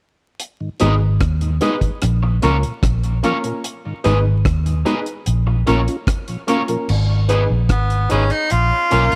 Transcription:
0.40 closed hi-hat
0.60 tonewheel organ G#2 D#3
0.80 fingered electric bass G#1, tonewheel organ G#3 B3 D#4, upright piano B3 D#4 G#4 B4, clean electric guitar D#4 G#4 B4 D#5, closed hi-hat
1.01 tonewheel organ G#2 D#3
1.21 fingered electric bass D#2, kick, cross-stick, closed hi-hat
1.41 tonewheel organ G#2 D#3, closed hi-hat
1.61 tonewheel organ G#3 B3 D#4, upright piano B3 D#4 G#4 B4, clean electric guitar D#4 G#4 B4 D#5, closed hi-hat
1.81 tonewheel organ G#2 D#3, kick, closed hi-hat
2.02 fingered electric bass A#1, cross-stick, closed hi-hat
2.23 tonewheel organ A#2, muted clean electric guitar stroke
2.42 fingered electric bass C#2, tonewheel organ F3 A#3 C#4, upright piano A#3 C#4 F4 A#4, clean electric guitar C#4 F4 A#4 C#5, closed hi-hat
2.63 tonewheel organ A#2, closed hi-hat
2.83 fingered electric bass A#1, kick, cross-stick, closed hi-hat
3.04 tonewheel organ A#2, closed hi-hat
3.23 tonewheel organ F3 A#3 C#4, upright piano A#3 C#4 F4 A#4, clean electric guitar C#4 F4 A#4 C#5, closed hi-hat
3.43 tonewheel organ A#2, upright piano A#3 C#4 F4 A#4, closed hi-hat
3.64 closed hi-hat
3.85 tonewheel organ G#2 D#3
4.04 fingered electric bass G#1, tonewheel organ G#3 B3 D#4, upright piano B3 D#4 G#4 B4, clean electric guitar D#4 G#4 B4 D#5, closed hi-hat
4.26 tonewheel organ G#2 D#3
4.45 fingered electric bass D#2, kick, cross-stick, closed hi-hat
4.66 tonewheel organ G#2 D#3, closed hi-hat
4.85 tonewheel organ G#3 B3 D#4, upright piano B3 D#4 G#4 B4, clean electric guitar D#4 G#4 B4 D#5, closed hi-hat
5.06 closed hi-hat
5.26 fingered electric bass A#1, closed hi-hat
5.47 tonewheel organ A#2 F3, muted clean electric guitar stroke
5.66 fingered electric bass A#1, upright piano A#3 C#4 F4 A#4, tonewheel organ A#3 C#4 F4, clean electric guitar C#4 F4 A#4 C#5, closed hi-hat
5.88 tonewheel organ C#4 F4, closed hi-hat
6.07 kick, cross-stick, closed hi-hat
6.28 tonewheel organ A#2 F3, closed hi-hat
6.47 upright piano A#3 C#4 F4 A#4, tonewheel organ A#3 C#4 F4, clean electric guitar C#4 F4 A#4 C#5, closed hi-hat
6.67 tonewheel organ A#2 F3, upright piano A#3 C#4 F4 A#4, closed hi-hat
6.89 fingered electric bass G#1, crash
7.29 upright piano B3 D#4 G#4 B4, clean electric guitar B3 D#4 G#4 B4, closed hi-hat
7.50 fingered electric bass A#1
7.69 fingered electric bass G#1, tenor saxophone B3, kick, cross-stick, closed hi-hat
7.90 closed hi-hat
8.09 fingered electric bass G#1, upright piano B3 D#4 G#4 B4, clean electric guitar B3 D#4 G#4 B4, tenor saxophone C#4, closed hi-hat
8.30 tenor saxophone D#4, closed hi-hat
8.50 fingered electric bass A#1, tenor saxophone F4, closed hi-hat
8.90 fingered electric bass B1, upright piano A#3 C#4 F4 A#4, clean electric guitar A#3 C#4 F4 A#4, closed hi-hat
9.12 closed hi-hat

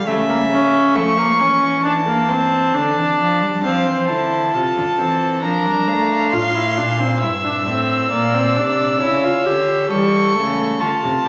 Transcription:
0.06 cello C#3, viola A3, violin E5
0.29 viola A#3
0.51 viola C#4
0.95 cello F3, viola A3, violin C#6
1.18 viola A#3
1.40 cello E3, viola C#4
1.85 viola D4, violin A5
2.07 viola A#3
2.29 viola C4
2.74 cello D3, viola D4
2.97 cello E3
3.19 cello F3
3.41 cello G3
3.64 cello F3, viola C4, violin C5 F5
3.86 cello E3
4.08 cello D3, viola E4, violin A5
4.54 cello C3, viola F4, violin A4
4.77 cello D3
4.99 cello E3, viola C4
5.43 cello F3, viola D4, violin A#4 A#5
5.66 cello G3
5.88 cello A3, violin F5
6.32 cello A2, viola F4, violin C6
6.55 viola E4
6.77 cello A#2, viola D4
7.00 viola C4
7.22 cello G2, viola E4, violin E5 E6
7.45 viola D4
7.67 cello A2, viola C4
8.11 cello A#2, viola A#3, violin D5
8.34 viola C4
8.56 cello C3, viola D4
9.01 cello C#3, viola E4, violin C#5
9.24 viola F4
9.46 cello D3, viola G4
9.90 cello E3, viola G3, violin A4 C#6
10.35 cello C#3, viola A3
10.80 cello D3, violin F4 A5
11.03 cello C3
11.25 cello A#2, violin G4

